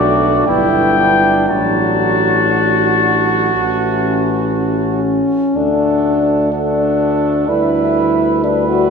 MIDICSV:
0, 0, Header, 1, 6, 480
1, 0, Start_track
1, 0, Key_signature, 2, "major"
1, 0, Tempo, 1015228
1, 707, Time_signature, 4, 2, 24, 8
1, 2627, Tempo, 961538
1, 4296, End_track
2, 0, Start_track
2, 0, Title_t, "Trumpet"
2, 0, Program_c, 0, 56
2, 0, Note_on_c, 0, 74, 77
2, 218, Note_off_c, 0, 74, 0
2, 221, Note_on_c, 0, 79, 91
2, 694, Note_off_c, 0, 79, 0
2, 703, Note_on_c, 0, 81, 69
2, 2373, Note_off_c, 0, 81, 0
2, 2628, Note_on_c, 0, 78, 38
2, 3091, Note_off_c, 0, 78, 0
2, 3110, Note_on_c, 0, 78, 45
2, 3582, Note_off_c, 0, 78, 0
2, 3595, Note_on_c, 0, 76, 48
2, 4062, Note_off_c, 0, 76, 0
2, 4072, Note_on_c, 0, 76, 48
2, 4296, Note_off_c, 0, 76, 0
2, 4296, End_track
3, 0, Start_track
3, 0, Title_t, "Trumpet"
3, 0, Program_c, 1, 56
3, 0, Note_on_c, 1, 66, 57
3, 225, Note_off_c, 1, 66, 0
3, 228, Note_on_c, 1, 64, 58
3, 461, Note_off_c, 1, 64, 0
3, 469, Note_on_c, 1, 62, 53
3, 704, Note_off_c, 1, 62, 0
3, 706, Note_on_c, 1, 66, 60
3, 2374, Note_off_c, 1, 66, 0
3, 2632, Note_on_c, 1, 69, 42
3, 3093, Note_off_c, 1, 69, 0
3, 3111, Note_on_c, 1, 69, 43
3, 3593, Note_on_c, 1, 71, 43
3, 3600, Note_off_c, 1, 69, 0
3, 4066, Note_off_c, 1, 71, 0
3, 4069, Note_on_c, 1, 71, 48
3, 4296, Note_off_c, 1, 71, 0
3, 4296, End_track
4, 0, Start_track
4, 0, Title_t, "French horn"
4, 0, Program_c, 2, 60
4, 0, Note_on_c, 2, 62, 60
4, 227, Note_on_c, 2, 64, 56
4, 234, Note_off_c, 2, 62, 0
4, 702, Note_off_c, 2, 64, 0
4, 705, Note_on_c, 2, 62, 50
4, 1517, Note_off_c, 2, 62, 0
4, 1673, Note_on_c, 2, 61, 49
4, 2134, Note_off_c, 2, 61, 0
4, 2152, Note_on_c, 2, 61, 63
4, 2628, Note_on_c, 2, 62, 57
4, 2636, Note_off_c, 2, 61, 0
4, 3109, Note_off_c, 2, 62, 0
4, 3112, Note_on_c, 2, 62, 59
4, 3590, Note_on_c, 2, 64, 66
4, 3598, Note_off_c, 2, 62, 0
4, 4068, Note_on_c, 2, 62, 64
4, 4075, Note_off_c, 2, 64, 0
4, 4183, Note_off_c, 2, 62, 0
4, 4186, Note_on_c, 2, 66, 65
4, 4296, Note_off_c, 2, 66, 0
4, 4296, End_track
5, 0, Start_track
5, 0, Title_t, "Trombone"
5, 0, Program_c, 3, 57
5, 0, Note_on_c, 3, 57, 58
5, 230, Note_on_c, 3, 59, 50
5, 237, Note_off_c, 3, 57, 0
5, 712, Note_on_c, 3, 54, 54
5, 719, Note_off_c, 3, 59, 0
5, 1537, Note_off_c, 3, 54, 0
5, 1675, Note_on_c, 3, 52, 48
5, 2457, Note_off_c, 3, 52, 0
5, 2631, Note_on_c, 3, 57, 42
5, 3092, Note_off_c, 3, 57, 0
5, 3111, Note_on_c, 3, 57, 45
5, 3592, Note_on_c, 3, 55, 45
5, 3599, Note_off_c, 3, 57, 0
5, 4068, Note_off_c, 3, 55, 0
5, 4071, Note_on_c, 3, 55, 44
5, 4296, Note_off_c, 3, 55, 0
5, 4296, End_track
6, 0, Start_track
6, 0, Title_t, "Bass trombone"
6, 0, Program_c, 4, 57
6, 0, Note_on_c, 4, 35, 61
6, 227, Note_on_c, 4, 31, 53
6, 234, Note_off_c, 4, 35, 0
6, 703, Note_off_c, 4, 31, 0
6, 706, Note_on_c, 4, 33, 58
6, 1653, Note_off_c, 4, 33, 0
6, 1672, Note_on_c, 4, 33, 51
6, 2458, Note_off_c, 4, 33, 0
6, 2628, Note_on_c, 4, 38, 46
6, 3572, Note_off_c, 4, 38, 0
6, 3591, Note_on_c, 4, 38, 52
6, 4296, Note_off_c, 4, 38, 0
6, 4296, End_track
0, 0, End_of_file